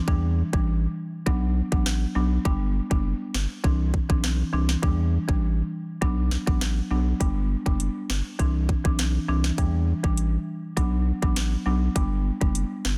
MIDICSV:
0, 0, Header, 1, 4, 480
1, 0, Start_track
1, 0, Key_signature, 1, "minor"
1, 0, Tempo, 594059
1, 62, Time_signature, 4, 2, 24, 8
1, 10487, End_track
2, 0, Start_track
2, 0, Title_t, "Marimba"
2, 0, Program_c, 0, 12
2, 60, Note_on_c, 0, 52, 91
2, 63, Note_on_c, 0, 55, 80
2, 65, Note_on_c, 0, 62, 102
2, 398, Note_off_c, 0, 52, 0
2, 399, Note_off_c, 0, 55, 0
2, 400, Note_off_c, 0, 62, 0
2, 426, Note_on_c, 0, 52, 72
2, 429, Note_on_c, 0, 55, 64
2, 432, Note_on_c, 0, 62, 84
2, 551, Note_off_c, 0, 52, 0
2, 553, Note_off_c, 0, 55, 0
2, 554, Note_off_c, 0, 62, 0
2, 1019, Note_on_c, 0, 54, 87
2, 1022, Note_on_c, 0, 59, 87
2, 1024, Note_on_c, 0, 62, 99
2, 1157, Note_off_c, 0, 54, 0
2, 1158, Note_off_c, 0, 59, 0
2, 1160, Note_off_c, 0, 62, 0
2, 1386, Note_on_c, 0, 54, 76
2, 1389, Note_on_c, 0, 59, 67
2, 1391, Note_on_c, 0, 62, 81
2, 1713, Note_off_c, 0, 54, 0
2, 1715, Note_off_c, 0, 59, 0
2, 1716, Note_off_c, 0, 62, 0
2, 1739, Note_on_c, 0, 54, 73
2, 1741, Note_on_c, 0, 59, 68
2, 1744, Note_on_c, 0, 62, 86
2, 1963, Note_off_c, 0, 54, 0
2, 1964, Note_off_c, 0, 59, 0
2, 1965, Note_off_c, 0, 62, 0
2, 1979, Note_on_c, 0, 55, 92
2, 1981, Note_on_c, 0, 59, 85
2, 1984, Note_on_c, 0, 62, 96
2, 2317, Note_off_c, 0, 55, 0
2, 2318, Note_off_c, 0, 59, 0
2, 2320, Note_off_c, 0, 62, 0
2, 2346, Note_on_c, 0, 55, 72
2, 2349, Note_on_c, 0, 59, 68
2, 2351, Note_on_c, 0, 62, 79
2, 2471, Note_off_c, 0, 55, 0
2, 2472, Note_off_c, 0, 59, 0
2, 2474, Note_off_c, 0, 62, 0
2, 2939, Note_on_c, 0, 52, 90
2, 2942, Note_on_c, 0, 60, 81
2, 2944, Note_on_c, 0, 62, 102
2, 3077, Note_off_c, 0, 52, 0
2, 3078, Note_off_c, 0, 60, 0
2, 3079, Note_off_c, 0, 62, 0
2, 3307, Note_on_c, 0, 52, 75
2, 3309, Note_on_c, 0, 60, 68
2, 3312, Note_on_c, 0, 62, 81
2, 3634, Note_off_c, 0, 52, 0
2, 3635, Note_off_c, 0, 60, 0
2, 3636, Note_off_c, 0, 62, 0
2, 3659, Note_on_c, 0, 52, 75
2, 3661, Note_on_c, 0, 60, 71
2, 3664, Note_on_c, 0, 62, 84
2, 3882, Note_off_c, 0, 52, 0
2, 3883, Note_off_c, 0, 60, 0
2, 3885, Note_off_c, 0, 62, 0
2, 3899, Note_on_c, 0, 52, 89
2, 3902, Note_on_c, 0, 55, 83
2, 3904, Note_on_c, 0, 62, 104
2, 4237, Note_off_c, 0, 52, 0
2, 4238, Note_off_c, 0, 55, 0
2, 4239, Note_off_c, 0, 62, 0
2, 4267, Note_on_c, 0, 52, 72
2, 4269, Note_on_c, 0, 55, 67
2, 4271, Note_on_c, 0, 62, 80
2, 4391, Note_off_c, 0, 52, 0
2, 4392, Note_off_c, 0, 55, 0
2, 4394, Note_off_c, 0, 62, 0
2, 4859, Note_on_c, 0, 54, 88
2, 4862, Note_on_c, 0, 59, 85
2, 4864, Note_on_c, 0, 62, 101
2, 4997, Note_off_c, 0, 54, 0
2, 4998, Note_off_c, 0, 59, 0
2, 5000, Note_off_c, 0, 62, 0
2, 5226, Note_on_c, 0, 54, 75
2, 5229, Note_on_c, 0, 59, 68
2, 5231, Note_on_c, 0, 62, 83
2, 5553, Note_off_c, 0, 54, 0
2, 5555, Note_off_c, 0, 59, 0
2, 5556, Note_off_c, 0, 62, 0
2, 5579, Note_on_c, 0, 54, 75
2, 5581, Note_on_c, 0, 59, 67
2, 5584, Note_on_c, 0, 62, 81
2, 5803, Note_off_c, 0, 54, 0
2, 5804, Note_off_c, 0, 59, 0
2, 5805, Note_off_c, 0, 62, 0
2, 5819, Note_on_c, 0, 55, 86
2, 5821, Note_on_c, 0, 59, 84
2, 5824, Note_on_c, 0, 62, 99
2, 6157, Note_off_c, 0, 55, 0
2, 6158, Note_off_c, 0, 59, 0
2, 6160, Note_off_c, 0, 62, 0
2, 6187, Note_on_c, 0, 55, 74
2, 6189, Note_on_c, 0, 59, 69
2, 6191, Note_on_c, 0, 62, 81
2, 6311, Note_off_c, 0, 55, 0
2, 6313, Note_off_c, 0, 59, 0
2, 6314, Note_off_c, 0, 62, 0
2, 6779, Note_on_c, 0, 52, 93
2, 6781, Note_on_c, 0, 60, 86
2, 6784, Note_on_c, 0, 62, 104
2, 6917, Note_off_c, 0, 52, 0
2, 6918, Note_off_c, 0, 60, 0
2, 6919, Note_off_c, 0, 62, 0
2, 7147, Note_on_c, 0, 52, 77
2, 7149, Note_on_c, 0, 60, 70
2, 7152, Note_on_c, 0, 62, 86
2, 7474, Note_off_c, 0, 52, 0
2, 7475, Note_off_c, 0, 60, 0
2, 7476, Note_off_c, 0, 62, 0
2, 7500, Note_on_c, 0, 52, 74
2, 7502, Note_on_c, 0, 60, 70
2, 7505, Note_on_c, 0, 62, 84
2, 7723, Note_off_c, 0, 52, 0
2, 7724, Note_off_c, 0, 60, 0
2, 7725, Note_off_c, 0, 62, 0
2, 7739, Note_on_c, 0, 52, 89
2, 7742, Note_on_c, 0, 55, 81
2, 7744, Note_on_c, 0, 62, 95
2, 8077, Note_off_c, 0, 52, 0
2, 8078, Note_off_c, 0, 55, 0
2, 8080, Note_off_c, 0, 62, 0
2, 8107, Note_on_c, 0, 52, 69
2, 8109, Note_on_c, 0, 55, 68
2, 8111, Note_on_c, 0, 62, 81
2, 8231, Note_off_c, 0, 52, 0
2, 8232, Note_off_c, 0, 55, 0
2, 8234, Note_off_c, 0, 62, 0
2, 8699, Note_on_c, 0, 54, 91
2, 8702, Note_on_c, 0, 59, 82
2, 8704, Note_on_c, 0, 62, 105
2, 8837, Note_off_c, 0, 54, 0
2, 8838, Note_off_c, 0, 59, 0
2, 8840, Note_off_c, 0, 62, 0
2, 9067, Note_on_c, 0, 54, 75
2, 9069, Note_on_c, 0, 59, 68
2, 9072, Note_on_c, 0, 62, 87
2, 9394, Note_off_c, 0, 54, 0
2, 9395, Note_off_c, 0, 59, 0
2, 9396, Note_off_c, 0, 62, 0
2, 9419, Note_on_c, 0, 54, 75
2, 9422, Note_on_c, 0, 59, 67
2, 9424, Note_on_c, 0, 62, 84
2, 9643, Note_off_c, 0, 54, 0
2, 9644, Note_off_c, 0, 59, 0
2, 9645, Note_off_c, 0, 62, 0
2, 9659, Note_on_c, 0, 55, 93
2, 9661, Note_on_c, 0, 59, 80
2, 9664, Note_on_c, 0, 62, 101
2, 9997, Note_off_c, 0, 55, 0
2, 9998, Note_off_c, 0, 59, 0
2, 10000, Note_off_c, 0, 62, 0
2, 10026, Note_on_c, 0, 55, 76
2, 10028, Note_on_c, 0, 59, 67
2, 10031, Note_on_c, 0, 62, 77
2, 10151, Note_off_c, 0, 55, 0
2, 10152, Note_off_c, 0, 59, 0
2, 10153, Note_off_c, 0, 62, 0
2, 10487, End_track
3, 0, Start_track
3, 0, Title_t, "Sub bass"
3, 0, Program_c, 1, 38
3, 62, Note_on_c, 1, 40, 101
3, 346, Note_off_c, 1, 40, 0
3, 431, Note_on_c, 1, 33, 93
3, 703, Note_off_c, 1, 33, 0
3, 1022, Note_on_c, 1, 35, 104
3, 1305, Note_off_c, 1, 35, 0
3, 1390, Note_on_c, 1, 33, 84
3, 1662, Note_off_c, 1, 33, 0
3, 1742, Note_on_c, 1, 35, 93
3, 1927, Note_off_c, 1, 35, 0
3, 1982, Note_on_c, 1, 31, 103
3, 2266, Note_off_c, 1, 31, 0
3, 2351, Note_on_c, 1, 30, 98
3, 2536, Note_off_c, 1, 30, 0
3, 2702, Note_on_c, 1, 31, 91
3, 2800, Note_off_c, 1, 31, 0
3, 2942, Note_on_c, 1, 36, 103
3, 3226, Note_off_c, 1, 36, 0
3, 3310, Note_on_c, 1, 35, 80
3, 3582, Note_off_c, 1, 35, 0
3, 3663, Note_on_c, 1, 36, 95
3, 3848, Note_off_c, 1, 36, 0
3, 3902, Note_on_c, 1, 40, 106
3, 4186, Note_off_c, 1, 40, 0
3, 4271, Note_on_c, 1, 33, 90
3, 4542, Note_off_c, 1, 33, 0
3, 4863, Note_on_c, 1, 35, 105
3, 5146, Note_off_c, 1, 35, 0
3, 5231, Note_on_c, 1, 33, 85
3, 5502, Note_off_c, 1, 33, 0
3, 5582, Note_on_c, 1, 35, 96
3, 5767, Note_off_c, 1, 35, 0
3, 5822, Note_on_c, 1, 31, 103
3, 6105, Note_off_c, 1, 31, 0
3, 6191, Note_on_c, 1, 30, 101
3, 6375, Note_off_c, 1, 30, 0
3, 6542, Note_on_c, 1, 31, 89
3, 6640, Note_off_c, 1, 31, 0
3, 6782, Note_on_c, 1, 36, 105
3, 7066, Note_off_c, 1, 36, 0
3, 7150, Note_on_c, 1, 35, 83
3, 7422, Note_off_c, 1, 35, 0
3, 7502, Note_on_c, 1, 36, 92
3, 7687, Note_off_c, 1, 36, 0
3, 7742, Note_on_c, 1, 40, 100
3, 8025, Note_off_c, 1, 40, 0
3, 8111, Note_on_c, 1, 33, 94
3, 8383, Note_off_c, 1, 33, 0
3, 8702, Note_on_c, 1, 35, 100
3, 8986, Note_off_c, 1, 35, 0
3, 9070, Note_on_c, 1, 33, 85
3, 9342, Note_off_c, 1, 33, 0
3, 9422, Note_on_c, 1, 35, 91
3, 9607, Note_off_c, 1, 35, 0
3, 9662, Note_on_c, 1, 31, 109
3, 9945, Note_off_c, 1, 31, 0
3, 10030, Note_on_c, 1, 30, 100
3, 10215, Note_off_c, 1, 30, 0
3, 10382, Note_on_c, 1, 31, 89
3, 10480, Note_off_c, 1, 31, 0
3, 10487, End_track
4, 0, Start_track
4, 0, Title_t, "Drums"
4, 62, Note_on_c, 9, 36, 120
4, 143, Note_off_c, 9, 36, 0
4, 431, Note_on_c, 9, 36, 97
4, 512, Note_off_c, 9, 36, 0
4, 1022, Note_on_c, 9, 36, 91
4, 1103, Note_off_c, 9, 36, 0
4, 1390, Note_on_c, 9, 36, 97
4, 1471, Note_off_c, 9, 36, 0
4, 1503, Note_on_c, 9, 38, 106
4, 1584, Note_off_c, 9, 38, 0
4, 1982, Note_on_c, 9, 36, 121
4, 2063, Note_off_c, 9, 36, 0
4, 2351, Note_on_c, 9, 36, 97
4, 2432, Note_off_c, 9, 36, 0
4, 2703, Note_on_c, 9, 38, 98
4, 2783, Note_off_c, 9, 38, 0
4, 2942, Note_on_c, 9, 36, 86
4, 3023, Note_off_c, 9, 36, 0
4, 3181, Note_on_c, 9, 36, 88
4, 3262, Note_off_c, 9, 36, 0
4, 3310, Note_on_c, 9, 36, 94
4, 3391, Note_off_c, 9, 36, 0
4, 3423, Note_on_c, 9, 38, 103
4, 3504, Note_off_c, 9, 38, 0
4, 3788, Note_on_c, 9, 38, 60
4, 3869, Note_off_c, 9, 38, 0
4, 3902, Note_on_c, 9, 36, 117
4, 3983, Note_off_c, 9, 36, 0
4, 4271, Note_on_c, 9, 36, 98
4, 4352, Note_off_c, 9, 36, 0
4, 4862, Note_on_c, 9, 36, 87
4, 4943, Note_off_c, 9, 36, 0
4, 5101, Note_on_c, 9, 38, 71
4, 5182, Note_off_c, 9, 38, 0
4, 5230, Note_on_c, 9, 36, 91
4, 5311, Note_off_c, 9, 36, 0
4, 5343, Note_on_c, 9, 38, 104
4, 5424, Note_off_c, 9, 38, 0
4, 5822, Note_on_c, 9, 36, 122
4, 5822, Note_on_c, 9, 42, 80
4, 5903, Note_off_c, 9, 36, 0
4, 5903, Note_off_c, 9, 42, 0
4, 6191, Note_on_c, 9, 36, 97
4, 6272, Note_off_c, 9, 36, 0
4, 6302, Note_on_c, 9, 42, 68
4, 6382, Note_off_c, 9, 42, 0
4, 6542, Note_on_c, 9, 38, 106
4, 6623, Note_off_c, 9, 38, 0
4, 6782, Note_on_c, 9, 36, 92
4, 6783, Note_on_c, 9, 42, 72
4, 6863, Note_off_c, 9, 36, 0
4, 6864, Note_off_c, 9, 42, 0
4, 7021, Note_on_c, 9, 36, 87
4, 7102, Note_off_c, 9, 36, 0
4, 7150, Note_on_c, 9, 36, 94
4, 7231, Note_off_c, 9, 36, 0
4, 7262, Note_on_c, 9, 42, 71
4, 7264, Note_on_c, 9, 38, 104
4, 7342, Note_off_c, 9, 42, 0
4, 7345, Note_off_c, 9, 38, 0
4, 7628, Note_on_c, 9, 38, 63
4, 7709, Note_off_c, 9, 38, 0
4, 7742, Note_on_c, 9, 36, 121
4, 7742, Note_on_c, 9, 42, 78
4, 7822, Note_off_c, 9, 42, 0
4, 7823, Note_off_c, 9, 36, 0
4, 8111, Note_on_c, 9, 36, 95
4, 8191, Note_off_c, 9, 36, 0
4, 8221, Note_on_c, 9, 42, 67
4, 8302, Note_off_c, 9, 42, 0
4, 8702, Note_on_c, 9, 36, 90
4, 8703, Note_on_c, 9, 42, 72
4, 8783, Note_off_c, 9, 36, 0
4, 8784, Note_off_c, 9, 42, 0
4, 9070, Note_on_c, 9, 36, 96
4, 9151, Note_off_c, 9, 36, 0
4, 9181, Note_on_c, 9, 42, 72
4, 9183, Note_on_c, 9, 38, 105
4, 9261, Note_off_c, 9, 42, 0
4, 9264, Note_off_c, 9, 38, 0
4, 9661, Note_on_c, 9, 42, 82
4, 9662, Note_on_c, 9, 36, 123
4, 9742, Note_off_c, 9, 36, 0
4, 9742, Note_off_c, 9, 42, 0
4, 10030, Note_on_c, 9, 36, 100
4, 10111, Note_off_c, 9, 36, 0
4, 10141, Note_on_c, 9, 42, 71
4, 10221, Note_off_c, 9, 42, 0
4, 10381, Note_on_c, 9, 38, 102
4, 10462, Note_off_c, 9, 38, 0
4, 10487, End_track
0, 0, End_of_file